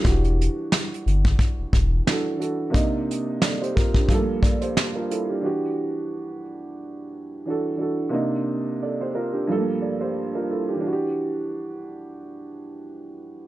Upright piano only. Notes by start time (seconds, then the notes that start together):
0.02 E3 D4 F#4
0.06 G4
2.06 E3 D4 F#4
2.11 A4
2.37 E3 D4 F#4
2.42 A4
2.70 C3 A#3 D4
2.74 D#4
3.43 A4 D5
3.61 G4 C5
3.76 F4 A#4
3.94 D4 G4
4.08 G2 F3 A3
4.12 A4
4.17 A#3
4.42 A4 D5
4.61 G4 C5
4.95 F4 A#4
5.11 E4 A4
5.29 D4 G4
5.41 E3 D4 F#4
5.46 G4
7.45 E3 D4 F#4
7.50 A4
7.77 E3 D4 F#4
7.81 A4
8.09 C3 A#3 D4
8.14 D#4
8.82 A4 D5
9.01 G4 C5
9.15 F4 A#4
9.33 D4 G4
9.47 G2 F3 A3
9.52 A4
9.57 A#3
9.81 A4 D5
10.00 G4 C5
10.35 F4 A#4
10.50 E4 A4
10.68 D4 G4
10.74 E3
10.81 D4
10.87 F#4
10.93 G4